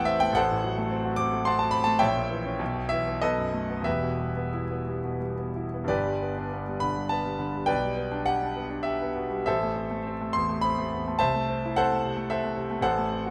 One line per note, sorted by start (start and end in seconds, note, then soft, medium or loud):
0.00 0.30 A1 medium
0.00 0.39 E2 soft
0.00 0.39 E3 medium
0.00 0.22 A3 medium
0.00 0.07 C4 medium
0.00 0.39 E4 medium
0.00 0.37 A4 medium
0.00 0.37 C5 medium
0.00 0.05 E5 loud
0.00 0.35 F#5 loud
0.00 0.20 G5 loud
0.00 0.39 A5 loud
0.05 0.30 C4 medium
0.05 0.21 E5 loud
0.20 0.36 A3 medium
0.20 0.35 G5 loud
0.32 1.96 A1 medium
0.32 1.18 F#5 loud
0.37 1.15 A4 medium
0.37 1.15 C5 medium
0.51 0.72 A2 medium
0.64 0.86 F#3 medium
0.78 1.00 A3 medium
0.91 1.13 C4 medium
1.05 1.27 F#4 medium
1.16 1.41 C4 medium
1.16 1.45 D6 loud
1.33 1.55 A3 soft
1.45 1.69 C4 medium
1.45 1.60 F#5 medium
1.45 1.57 A5 medium
1.45 1.60 C6 loud
1.59 1.83 F#4 medium
1.59 1.73 A5 medium
1.71 1.96 C4 medium
1.71 1.86 B5 loud
1.84 2.01 A3 medium
1.84 2.00 A5 loud
1.99 2.58 A#1 medium
1.99 2.86 C#5 medium
1.99 2.85 E5 medium
1.99 2.89 G5 loud
2.16 2.40 A#2 medium
2.31 2.54 E3 medium
2.45 2.60 C#4 medium
2.59 3.19 B1 medium
2.74 2.99 B2 soft
2.89 3.16 E3 medium
2.89 3.20 E5 loud
3.07 3.22 B3 soft
3.21 3.85 B1 medium
3.21 3.83 A4 medium
3.21 3.83 B4 medium
3.21 3.86 D#5 medium
3.38 3.63 F#2 soft
3.54 3.80 A3 soft
3.70 3.87 B3 soft
3.81 5.83 E2 medium
3.81 5.21 E5 medium
3.85 5.85 E1 medium
3.85 5.18 G4 medium
3.85 5.18 B4 medium
4.03 4.30 B2 soft
4.19 4.47 G3 soft
4.37 4.64 B3 soft
4.54 4.81 E4 soft
4.71 4.98 B3 soft
4.88 5.15 G3 soft
5.04 5.32 B2 soft
5.20 5.49 G3 soft
5.37 5.66 B3 soft
5.56 5.83 E4 soft
5.74 5.90 B3 soft
5.84 7.64 G2 medium
5.84 6.82 D5 medium
5.89 7.66 G1 medium
5.89 6.78 G4 medium
5.89 6.79 B4 medium
6.05 6.30 G3 soft
6.22 6.46 B3 soft
6.38 6.62 D4 medium
6.53 6.77 B3 medium
6.68 6.92 G3 soft
6.80 7.07 D3 soft
6.80 7.11 B5 loud
6.97 7.21 G3 soft
7.09 7.35 B3 medium
7.09 7.69 A5 medium
7.25 7.49 G3 soft
7.39 7.63 D3 soft
7.55 7.70 G3 soft
7.66 9.42 B1 medium
7.66 8.22 B4 medium
7.66 8.23 D5 medium
7.66 8.26 G5 loud
7.84 8.07 G3 soft
7.97 8.21 B3 soft
8.12 8.36 D4 medium
8.26 8.51 G4 medium
8.26 8.86 F#5 loud
8.42 8.66 D4 soft
8.56 8.81 B3 medium
8.70 8.95 D4 soft
8.83 9.10 G4 medium
8.83 9.44 E5 medium
9.02 9.26 B3 soft
9.16 9.41 B2 soft
9.31 9.46 G3 medium
9.46 11.16 A1 medium
9.46 10.29 A4 medium
9.46 10.29 C5 medium
9.46 10.33 E5 medium
9.63 9.85 A3 soft
9.76 9.99 C4 soft
9.91 10.13 A3 soft
10.07 10.29 C4 medium
10.21 10.43 A3 soft
10.33 10.58 E2 medium
10.33 10.63 C6 loud
10.49 10.72 A3 soft
10.61 10.87 C4 medium
10.61 11.19 B5 loud
10.78 11.01 A3 soft
10.93 11.15 E2 soft
11.08 11.21 A3 soft
11.19 12.78 C2 medium
11.19 11.71 C5 medium
11.19 11.71 E5 medium
11.19 11.74 A5 loud
11.35 11.56 A3 soft
11.50 11.70 C4 medium
11.65 11.85 E4 medium
11.76 11.98 C4 medium
11.76 12.26 A4 medium
11.76 12.26 C5 medium
11.76 12.29 F#5 loud
11.92 12.12 A3 soft
12.05 12.25 C3 medium
12.17 12.37 A3 medium
12.30 12.51 C4 medium
12.30 12.79 A4 medium
12.30 12.79 C5 medium
12.30 12.82 E5 medium
12.44 12.64 A3 soft
12.57 12.77 C3 soft
12.71 12.83 A3 medium
12.81 13.30 A1 medium
12.81 13.30 A4 medium
12.81 13.30 C5 medium
12.81 13.30 F#5 loud
12.98 13.18 A3 soft
13.12 13.30 C4 medium
13.26 13.30 F#4 medium